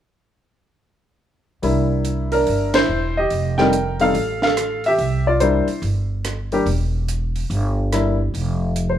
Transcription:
1.62 2.43 C2 medium
1.62 2.80 G3 soft
1.62 2.80 A#3 soft
1.62 2.33 D4 soft
1.62 2.76 E4 medium
1.62 open hi-hat soft
2.05 closed hi-hat soft
2.32 2.72 D4 medium
2.32 2.71 A#4 medium
2.32 open hi-hat soft
2.47 2.86 G1 medium
2.47 open hi-hat soft
2.74 3.15 E4 medium
2.74 3.18 C5 medium
2.74 snare medium
2.74 ride medium
2.89 3.28 E1 medium
3.17 3.57 G4 medium
3.17 3.60 D#5 medium
3.30 4.11 F1 medium
3.30 open hi-hat soft
3.58 3.72 G3 medium
3.58 3.72 A3 medium
3.58 3.72 C4 medium
3.58 3.72 D#4 medium
3.58 3.99 A#4 medium
3.58 4.01 G5 medium
3.58 snare soft
3.73 closed hi-hat soft
4.00 4.13 G3 medium
4.00 4.14 A3 medium
4.00 4.14 C4 soft
4.00 4.14 D#4 medium
4.00 4.41 A4 medium
4.00 4.40 F5 medium
4.00 open hi-hat soft
4.14 4.95 A1 medium
4.14 open hi-hat soft
4.42 4.83 A4 medium
4.42 4.82 F5 medium
4.42 snare soft
4.57 cross-stick medium
4.57 closed hi-hat soft
4.84 5.24 E5 medium
4.84 open hi-hat soft
4.88 5.25 G4 medium
4.98 5.64 C2 medium
4.98 open hi-hat soft
5.27 5.41 F4 medium
5.27 5.42 D5 medium
5.40 5.66 G3 medium
5.40 5.66 A#3 medium
5.40 5.66 D4 medium
5.40 5.81 E4 medium
5.40 5.80 C5 medium
5.40 closed hi-hat soft
5.67 muted upright bass stroke soft
5.67 open hi-hat soft
5.82 6.62 G1 medium
5.82 open hi-hat soft
6.25 cross-stick medium
6.25 closed hi-hat soft
6.52 6.66 G3 medium
6.52 6.66 A#3 medium
6.52 6.66 D4 medium
6.52 6.66 G4 medium
6.52 open hi-hat soft
6.66 7.46 E1 medium
6.66 open hi-hat soft
7.09 closed hi-hat soft
7.36 open hi-hat soft
7.50 8.30 G1 medium
7.50 open hi-hat soft
7.92 8.17 G3 soft
7.92 8.17 A#3 soft
7.92 8.17 D4 soft
7.92 8.18 E4 medium
7.92 cross-stick medium
7.92 closed hi-hat soft
8.34 8.99 F1 medium
8.34 open hi-hat soft
8.76 closed hi-hat soft
8.90 8.99 C5 medium

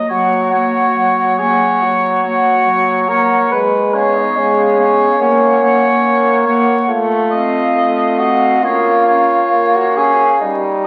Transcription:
0.00 0.11 A#3 soft
0.00 0.11 D#5 soft
0.09 0.85 F#3 medium
0.09 0.52 A#3 soft
0.09 1.40 F#4 medium
0.09 0.51 C#5 soft
0.09 0.53 F#5 medium
0.53 1.38 A#3 medium
0.53 1.37 C#5 medium
0.53 1.37 F#5 medium
0.95 1.71 F#3 medium
1.38 2.22 A#3 soft
1.38 1.81 G#4 medium
1.38 2.22 C#5 medium
1.38 2.23 F#5 medium
1.82 2.56 F#3 medium
1.82 3.10 F#4 medium
2.23 3.07 A#3 medium
2.23 3.07 C#5 medium
2.23 3.08 F#5 medium
2.65 3.41 F#3 medium
3.07 3.50 A#3 medium
3.07 3.51 A#4 medium
3.07 3.51 C#5 medium
3.07 3.51 F#5 medium
3.50 4.26 G#3 medium
3.50 3.96 B4 medium
3.94 4.76 B3 medium
3.94 4.18 C#4 medium
3.94 4.76 C#5 medium
3.94 4.77 F5 medium
4.16 4.38 D#4 medium
4.35 5.09 G#3 medium
4.35 6.46 C#4 medium
4.77 5.18 B3 medium
4.77 5.20 C#5 medium
4.77 5.19 F5 medium
5.19 5.61 A#3 medium
5.19 5.94 A#3 medium
5.19 5.62 C#5 medium
5.19 5.61 F#5 medium
5.62 6.44 A#3 medium
5.62 6.45 C#5 medium
5.62 6.45 F#5 medium
6.02 6.78 A#3 medium
6.46 6.88 A#3 medium
6.46 6.89 C#5 medium
6.46 6.89 F#5 medium
6.89 7.66 A3 medium
6.89 8.20 F4 medium
7.31 8.18 C4 medium
7.31 8.17 D#5 medium
7.31 8.19 F5 medium
7.76 8.53 A3 medium
8.19 8.63 C4 medium
8.19 8.64 F#4 loud
8.19 8.62 D#5 medium
8.19 8.63 F5 medium
8.63 9.42 A#3 medium
8.63 9.07 C#4 medium
8.63 9.77 F4 loud
8.63 9.06 C#5 medium
8.63 9.08 F5 medium
9.06 9.96 C#4 medium
9.06 9.95 C#5 medium
9.06 9.96 F5 medium
9.53 10.31 A#3 medium
9.76 9.99 F#4 loud
9.96 10.40 C#4 medium
9.96 10.40 G#4 loud
9.96 10.39 C#5 medium
9.96 10.40 F5 medium
10.41 10.87 G3 medium
10.41 10.87 D#4 loud

